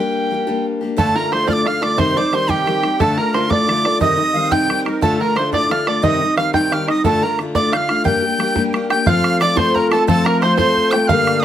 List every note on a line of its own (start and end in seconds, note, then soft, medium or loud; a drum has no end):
0.00 0.30 G3 medium
0.00 0.31 A#3 medium
0.00 0.32 D4 medium
0.00 0.32 G4 medium
0.00 0.65 G5 medium
0.31 0.47 G3 soft
0.31 0.47 A#3 medium
0.31 0.46 D4 soft
0.31 0.46 G4 medium
0.47 0.83 G3 medium
0.47 0.82 A#3 medium
0.47 0.81 D4 medium
0.47 0.80 G4 medium
0.81 0.98 A#3 soft
0.81 0.98 D4 soft
0.81 0.98 G4 soft
0.97 1.15 D2 medium
0.97 1.16 A2 medium
0.97 1.16 D3 medium
0.97 1.16 A3 medium
0.97 1.14 D4 medium
0.97 1.14 F4 medium
0.97 1.16 A4 medium
0.97 1.15 A4 medium
0.97 1.18 A5 loud
0.97 bodhran medium
1.07 bodhran soft
1.15 1.30 D3 soft
1.15 1.31 A3 soft
1.15 1.32 D4 soft
1.15 1.32 F4 medium
1.15 1.32 A#4 medium
1.15 1.31 A#4 medium
1.15 1.35 A#5 medium
1.31 1.47 D3 medium
1.31 1.46 A3 medium
1.31 1.46 D4 medium
1.31 1.45 F4 medium
1.31 1.49 C5 medium
1.31 1.47 C5 medium
1.31 1.48 C6 medium
1.31 bodhran soft
1.46 1.67 D2 medium
1.46 1.67 A2 medium
1.46 1.63 D3 medium
1.46 1.65 A3 medium
1.46 1.66 D4 medium
1.46 1.66 F4 medium
1.46 1.65 D5 medium
1.46 1.67 D5 medium
1.46 1.54 F6 loud
1.46 bodhran medium
1.53 1.69 D6 loud
1.65 1.82 D3 soft
1.65 1.82 A3 medium
1.65 1.81 D4 medium
1.65 1.80 F4 medium
1.65 1.81 F5 medium
1.65 1.84 F6 loud
1.65 bodhran medium
1.81 1.97 D3 medium
1.81 1.98 A3 soft
1.81 1.98 D4 medium
1.81 1.98 F4 soft
1.81 1.97 D5 medium
1.81 1.99 D5 medium
1.81 2.01 D6 medium
1.81 bodhran medium
1.97 2.16 C3 medium
1.97 2.17 D#3 medium
1.97 2.17 G3 medium
1.97 2.16 C4 medium
1.97 2.14 D#4 medium
1.97 2.17 C5 medium
1.97 2.32 C5 medium
1.97 2.19 C6 loud
1.97 bodhran medium
2.15 2.32 G3 soft
2.15 2.33 C4 soft
2.15 2.33 D#4 medium
2.15 2.34 D5 medium
2.15 2.36 D6 loud
2.31 2.48 D#3 medium
2.31 2.48 G3 medium
2.31 2.48 C4 medium
2.31 2.47 D#4 medium
2.31 2.50 C5 medium
2.31 2.48 C5 medium
2.31 bodhran soft
2.35 2.52 C6 medium
2.48 2.68 C3 medium
2.48 2.66 D#3 medium
2.48 2.67 G3 medium
2.48 2.68 C4 medium
2.48 2.67 D#4 medium
2.48 2.97 G4 medium
2.48 3.02 G4 medium
2.48 3.02 G5 loud
2.48 bodhran medium
2.67 2.83 D#3 medium
2.67 2.84 G3 medium
2.67 2.83 C4 medium
2.67 2.81 D#4 medium
2.67 bodhran medium
2.83 3.01 G3 soft
2.83 3.00 C4 soft
2.83 2.99 D#4 soft
2.83 bodhran medium
2.99 3.18 D2 medium
2.99 3.18 A2 medium
2.99 3.19 D3 medium
2.99 3.19 A3 medium
2.99 3.17 D4 loud
2.99 3.16 F4 medium
2.99 3.17 A4 medium
2.99 3.19 A5 loud
2.99 bodhran medium
3.17 3.32 D3 soft
3.17 3.33 A3 soft
3.17 3.34 D4 soft
3.17 3.34 F4 soft
3.17 3.51 A#4 medium
3.17 3.35 A#4 medium
3.17 3.36 A#5 loud
3.33 3.49 D3 medium
3.33 3.49 A3 medium
3.33 3.48 D4 medium
3.33 3.47 F4 medium
3.33 3.51 C5 medium
3.33 3.52 C6 medium
3.33 bodhran medium
3.49 3.69 D2 medium
3.49 3.69 A2 medium
3.49 3.66 D3 medium
3.49 3.67 A3 medium
3.49 3.68 D4 medium
3.49 3.68 F4 medium
3.49 3.82 D5 medium
3.49 3.84 D5 medium
3.49 4.01 D6 loud
3.49 bodhran medium
3.67 3.84 D3 medium
3.67 3.85 A3 medium
3.67 3.84 D4 medium
3.67 3.82 F4 medium
3.67 bodhran medium
3.83 4.00 D3 soft
3.83 4.00 A3 medium
3.83 4.01 D4 soft
3.83 4.00 F4 medium
3.83 3.99 D5 medium
3.83 4.01 D5 medium
3.83 bodhran medium
3.99 4.18 C3 medium
3.99 4.19 D#3 medium
3.99 4.19 G3 medium
3.99 4.18 C4 medium
3.99 4.16 D#4 medium
3.99 4.36 D#5 medium
3.99 4.48 D#5 medium
3.99 4.54 D#6 loud
3.99 bodhran medium
4.17 4.34 G3 soft
4.17 4.35 C4 soft
4.17 4.34 D#4 medium
4.33 4.51 D#3 medium
4.33 4.51 G3 medium
4.33 4.50 C4 medium
4.33 4.50 D#4 medium
4.33 4.51 F5 medium
4.50 4.70 C3 medium
4.50 4.67 D#3 medium
4.50 4.69 G3 medium
4.50 4.70 C4 medium
4.50 4.70 D#4 medium
4.50 4.87 G5 medium
4.50 4.99 G5 medium
4.50 4.80 G6 loud
4.50 bodhran medium
4.68 4.85 D#3 medium
4.68 4.86 G3 medium
4.68 4.86 C4 medium
4.68 4.84 D#4 medium
4.68 bodhran medium
4.85 5.02 G3 soft
4.85 5.03 C4 soft
4.85 5.02 D#4 medium
4.85 5.01 A#4 medium
4.85 bodhran medium
5.01 5.20 D2 medium
5.01 5.20 A2 medium
5.01 5.21 D3 medium
5.01 5.20 A3 loud
5.01 5.19 D4 medium
5.01 5.18 F4 loud
5.01 5.21 A4 medium
5.01 5.19 A4 medium
5.01 5.22 A5 loud
5.01 bodhran medium
5.12 bodhran soft
5.19 5.34 D3 soft
5.19 5.36 A3 soft
5.19 5.37 D4 soft
5.19 5.36 F4 medium
5.19 5.37 A#4 medium
5.19 5.36 A#4 medium
5.19 5.38 A#5 medium
5.36 5.52 D3 medium
5.36 5.52 A3 medium
5.36 5.51 D4 medium
5.36 5.51 F4 medium
5.36 5.43 C5 medium
5.36 5.51 C5 medium
5.36 5.52 C6 medium
5.36 bodhran medium
5.52 5.72 D2 medium
5.52 5.71 A2 medium
5.52 5.68 D3 medium
5.52 5.69 A3 medium
5.52 5.70 D4 medium
5.52 5.71 F4 medium
5.52 5.85 D5 medium
5.52 5.70 D5 medium
5.52 5.73 D6 loud
5.52 bodhran medium
5.69 5.86 D3 medium
5.69 5.87 A3 medium
5.69 5.86 D4 medium
5.69 5.84 F4 medium
5.69 5.86 F5 medium
5.69 5.89 F6 medium
5.69 bodhran medium
5.85 6.03 D3 soft
5.85 6.03 A3 soft
5.85 6.03 D4 soft
5.85 6.03 F4 medium
5.85 6.02 D5 medium
5.85 6.03 D5 medium
5.85 6.05 D6 medium
5.85 bodhran medium
6.02 6.21 C3 medium
6.02 6.21 D#3 medium
6.02 6.21 G3 medium
6.02 6.21 C4 loud
6.02 6.19 D#4 medium
6.02 6.35 D#5 medium
6.02 6.37 D#6 loud
6.02 bodhran medium
6.20 6.36 G3 medium
6.20 6.37 C4 soft
6.20 6.37 D#4 soft
6.36 6.53 D#3 medium
6.36 6.54 G3 medium
6.36 6.53 C4 medium
6.36 6.52 D#4 medium
6.36 6.52 F5 medium
6.36 6.53 F5 medium
6.36 6.53 F6 loud
6.36 bodhran medium
6.53 6.73 C3 medium
6.53 6.70 D#3 medium
6.53 6.72 G3 medium
6.53 6.72 C4 medium
6.53 6.72 D#4 medium
6.53 6.71 G5 medium
6.53 6.90 G5 medium
6.53 6.75 G6 loud
6.53 bodhran medium
6.71 6.88 D#3 medium
6.71 6.89 G3 medium
6.71 6.89 C4 medium
6.71 6.86 D#4 medium
6.71 6.89 F5 medium
6.71 6.89 F6 medium
6.71 bodhran medium
6.87 7.05 G3 soft
6.87 7.05 C4 soft
6.87 7.04 D#4 medium
6.87 7.05 D#5 medium
6.87 7.03 D#5 medium
6.87 7.04 D#6 medium
6.87 bodhran medium
7.04 7.23 D2 medium
7.04 7.23 A2 medium
7.04 7.23 D3 medium
7.04 7.23 A3 loud
7.04 7.23 D4 medium
7.04 7.21 F4 medium
7.04 7.23 A4 medium
7.04 7.24 A5 loud
7.04 bodhran medium
7.14 bodhran soft
7.22 7.39 A3 soft
7.22 7.40 D4 soft
7.22 7.39 F4 medium
7.22 7.37 A#4 medium
7.22 7.38 A#4 medium
7.22 7.39 A#5 loud
7.26 7.38 D3 soft
7.39 7.55 D3 medium
7.39 7.55 A3 medium
7.39 7.54 D4 medium
7.39 7.54 F4 medium
7.39 bodhran medium
7.55 7.74 D2 medium
7.55 7.74 A2 medium
7.55 7.71 D3 medium
7.55 7.73 A3 medium
7.55 7.73 D4 medium
7.55 7.73 F4 medium
7.55 7.74 D5 medium
7.55 7.72 D5 medium
7.55 7.75 D6 loud
7.55 bodhran medium
7.72 7.89 D3 medium
7.72 7.90 A3 soft
7.72 7.89 D4 medium
7.72 7.87 F4 medium
7.72 8.06 F5 medium
7.72 8.03 F5 medium
7.72 7.78 G6 medium
7.72 bodhran medium
7.77 8.05 F6 medium
7.88 8.04 D3 soft
7.88 8.04 A3 soft
7.88 8.04 D4 medium
7.88 8.05 F4 medium
7.88 bodhran medium
8.04 8.23 G3 medium
8.04 8.23 A#3 medium
8.04 8.23 D4 loud
8.04 8.21 G4 medium
8.04 8.86 G5 medium
8.04 8.63 G6 loud
8.04 bodhran medium
8.15 bodhran soft
8.22 8.39 A#3 soft
8.22 8.40 D4 medium
8.22 8.39 G4 medium
8.38 8.55 G3 medium
8.38 8.55 A#3 medium
8.38 8.55 D4 medium
8.38 8.54 G4 medium
8.38 bodhran medium
8.55 8.72 G3 medium
8.55 8.73 A#3 medium
8.55 8.74 D4 medium
8.55 8.74 G4 medium
8.55 bodhran medium
8.73 8.90 G3 medium
8.73 8.90 A#3 medium
8.73 8.90 D4 medium
8.73 8.88 G4 medium
8.73 bodhran medium
8.89 9.07 D4 soft
8.89 9.06 G4 medium
8.89 9.05 G5 medium
8.89 9.06 G5 medium
8.89 9.06 G6 loud
8.89 bodhran medium
8.93 9.07 A#3 medium
9.06 9.39 F3 medium
9.06 9.42 A3 medium
9.06 9.40 C4 medium
9.06 9.42 F4 loud
9.06 9.42 F5 medium
9.06 9.39 F5 loud
9.06 9.40 F6 loud
9.06 9.11 G6 loud
9.06 bodhran loud
9.24 bodhran medium
9.40 9.57 F3 medium
9.40 9.55 A3 medium
9.40 9.56 C4 medium
9.40 9.54 F4 medium
9.40 9.58 D5 medium
9.40 9.56 D5 medium
9.40 9.58 D6 loud
9.40 bodhran medium
9.56 9.92 F3 medium
9.56 9.92 A3 medium
9.56 9.92 C4 medium
9.56 9.90 F4 medium
9.56 9.76 C5 medium
9.56 9.75 C5 medium
9.56 9.76 C6 loud
9.56 bodhran loud
9.75 9.92 A#4 medium
9.75 9.90 A#4 medium
9.75 9.91 A#5 loud
9.75 bodhran soft
9.91 10.08 A3 medium
9.91 10.07 C4 medium
9.91 10.07 F4 medium
9.91 10.06 A4 medium
9.91 10.07 A4 medium
9.91 10.06 A5 medium
9.91 bodhran medium
10.07 10.41 F3 medium
10.07 10.43 A3 medium
10.07 10.42 C4 loud
10.07 10.43 F4 loud
10.07 10.26 A4 medium
10.07 10.26 A5 loud
10.07 bodhran medium
10.25 10.42 A#4 medium
10.25 10.41 A#5 loud
10.25 bodhran medium
10.41 10.58 F3 medium
10.41 10.58 A3 medium
10.41 10.58 C4 medium
10.41 10.57 C5 medium
10.41 10.56 C5 loud
10.41 10.56 C6 loud
10.41 bodhran medium
10.45 10.57 F4 medium
10.57 10.94 F3 medium
10.57 10.93 A3 medium
10.57 10.93 C4 medium
10.57 10.91 F4 medium
10.57 10.93 C5 medium
10.57 10.93 C6 loud
10.57 bodhran medium
10.77 bodhran soft
10.91 11.09 A3 medium
10.91 11.08 F4 medium
10.91 11.09 G5 medium
10.91 11.08 G5 medium
10.91 11.09 G6 loud
10.91 bodhran medium
10.96 11.10 C4 medium
11.08 11.43 G2 medium
11.08 11.43 D3 loud
11.08 11.42 G3 loud
11.08 11.44 A3 loud
11.08 11.43 A#3 loud
11.08 11.44 D4 loud
11.08 11.43 F5 loud
11.08 11.41 F5 medium
11.08 11.41 F6 loud
11.08 bodhran medium
11.27 bodhran medium
11.40 11.44 D#6 medium